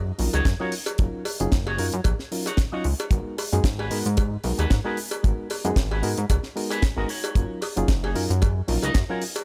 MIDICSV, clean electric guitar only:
0, 0, Header, 1, 3, 480
1, 0, Start_track
1, 0, Tempo, 530973
1, 892, Time_signature, 4, 2, 24, 8
1, 8535, End_track
2, 0, Start_track
2, 0, Title_t, "Clean electric guitar"
2, 0, Program_c, 0, 27
2, 296, Note_on_c, 0, 63, 106
2, 305, Note_on_c, 0, 66, 96
2, 314, Note_on_c, 0, 73, 120
2, 407, Note_off_c, 0, 63, 0
2, 412, Note_off_c, 0, 66, 0
2, 416, Note_off_c, 0, 73, 0
2, 538, Note_on_c, 0, 63, 87
2, 546, Note_on_c, 0, 66, 83
2, 554, Note_on_c, 0, 73, 97
2, 648, Note_off_c, 0, 63, 0
2, 652, Note_off_c, 0, 66, 0
2, 656, Note_off_c, 0, 73, 0
2, 1499, Note_on_c, 0, 63, 85
2, 1508, Note_on_c, 0, 66, 78
2, 1516, Note_on_c, 0, 73, 91
2, 1676, Note_off_c, 0, 63, 0
2, 1680, Note_off_c, 0, 66, 0
2, 1684, Note_off_c, 0, 73, 0
2, 2220, Note_on_c, 0, 63, 104
2, 2228, Note_on_c, 0, 66, 96
2, 2237, Note_on_c, 0, 73, 117
2, 2329, Note_off_c, 0, 63, 0
2, 2333, Note_off_c, 0, 66, 0
2, 2338, Note_off_c, 0, 73, 0
2, 2459, Note_on_c, 0, 63, 83
2, 2467, Note_on_c, 0, 66, 78
2, 2476, Note_on_c, 0, 73, 92
2, 2569, Note_off_c, 0, 63, 0
2, 2573, Note_off_c, 0, 66, 0
2, 2577, Note_off_c, 0, 73, 0
2, 3419, Note_on_c, 0, 66, 81
2, 3428, Note_on_c, 0, 68, 77
2, 3437, Note_on_c, 0, 71, 93
2, 3596, Note_off_c, 0, 66, 0
2, 3600, Note_off_c, 0, 68, 0
2, 3605, Note_off_c, 0, 71, 0
2, 4141, Note_on_c, 0, 66, 111
2, 4149, Note_on_c, 0, 68, 98
2, 4157, Note_on_c, 0, 71, 120
2, 4250, Note_off_c, 0, 66, 0
2, 4254, Note_off_c, 0, 68, 0
2, 4258, Note_off_c, 0, 71, 0
2, 4378, Note_on_c, 0, 66, 88
2, 4387, Note_on_c, 0, 68, 82
2, 4396, Note_on_c, 0, 71, 97
2, 4488, Note_off_c, 0, 66, 0
2, 4493, Note_off_c, 0, 68, 0
2, 4497, Note_off_c, 0, 71, 0
2, 5338, Note_on_c, 0, 66, 85
2, 5347, Note_on_c, 0, 68, 74
2, 5356, Note_on_c, 0, 71, 91
2, 5515, Note_off_c, 0, 66, 0
2, 5520, Note_off_c, 0, 68, 0
2, 5524, Note_off_c, 0, 71, 0
2, 6055, Note_on_c, 0, 66, 112
2, 6064, Note_on_c, 0, 68, 103
2, 6073, Note_on_c, 0, 71, 121
2, 6167, Note_off_c, 0, 66, 0
2, 6171, Note_off_c, 0, 68, 0
2, 6176, Note_off_c, 0, 71, 0
2, 6297, Note_on_c, 0, 66, 91
2, 6305, Note_on_c, 0, 68, 82
2, 6314, Note_on_c, 0, 70, 98
2, 6399, Note_off_c, 0, 66, 0
2, 6403, Note_on_c, 0, 63, 88
2, 6408, Note_off_c, 0, 68, 0
2, 6412, Note_on_c, 0, 66, 84
2, 6416, Note_off_c, 0, 70, 0
2, 6420, Note_on_c, 0, 73, 98
2, 6803, Note_off_c, 0, 63, 0
2, 6807, Note_off_c, 0, 66, 0
2, 6811, Note_off_c, 0, 73, 0
2, 7256, Note_on_c, 0, 63, 84
2, 7264, Note_on_c, 0, 66, 77
2, 7273, Note_on_c, 0, 68, 93
2, 7434, Note_off_c, 0, 63, 0
2, 7438, Note_off_c, 0, 66, 0
2, 7443, Note_off_c, 0, 68, 0
2, 7977, Note_on_c, 0, 63, 111
2, 7985, Note_on_c, 0, 66, 99
2, 7995, Note_on_c, 0, 75, 121
2, 8088, Note_off_c, 0, 63, 0
2, 8092, Note_off_c, 0, 66, 0
2, 8097, Note_off_c, 0, 75, 0
2, 8217, Note_on_c, 0, 63, 89
2, 8226, Note_on_c, 0, 66, 82
2, 8234, Note_on_c, 0, 68, 100
2, 8328, Note_off_c, 0, 63, 0
2, 8332, Note_off_c, 0, 66, 0
2, 8336, Note_off_c, 0, 68, 0
2, 8535, End_track
3, 0, Start_track
3, 0, Title_t, "Muted clean electric guitar strokes"
3, 777, Note_on_c, 9, 29, 31
3, 867, Note_off_c, 9, 29, 0
3, 1125, Note_on_c, 9, 29, 109
3, 1215, Note_off_c, 9, 29, 0
3, 1258, Note_on_c, 9, 29, 31
3, 1348, Note_off_c, 9, 29, 0
3, 1846, Note_on_c, 9, 29, 32
3, 1937, Note_off_c, 9, 29, 0
3, 2700, Note_on_c, 9, 29, 31
3, 2791, Note_off_c, 9, 29, 0
3, 3046, Note_on_c, 9, 29, 107
3, 3137, Note_off_c, 9, 29, 0
3, 3181, Note_on_c, 9, 29, 33
3, 3272, Note_off_c, 9, 29, 0
3, 3765, Note_on_c, 9, 29, 32
3, 3855, Note_off_c, 9, 29, 0
3, 4619, Note_on_c, 9, 29, 32
3, 4710, Note_off_c, 9, 29, 0
3, 4965, Note_on_c, 9, 29, 109
3, 5055, Note_off_c, 9, 29, 0
3, 5098, Note_on_c, 9, 29, 32
3, 5189, Note_off_c, 9, 29, 0
3, 5683, Note_on_c, 9, 29, 32
3, 5773, Note_off_c, 9, 29, 0
3, 6883, Note_on_c, 9, 29, 109
3, 6974, Note_off_c, 9, 29, 0
3, 7017, Note_on_c, 9, 29, 33
3, 7107, Note_off_c, 9, 29, 0
3, 7602, Note_on_c, 9, 29, 33
3, 7693, Note_off_c, 9, 29, 0
3, 8456, Note_on_c, 9, 29, 33
3, 8535, Note_off_c, 9, 29, 0
3, 8535, End_track
0, 0, End_of_file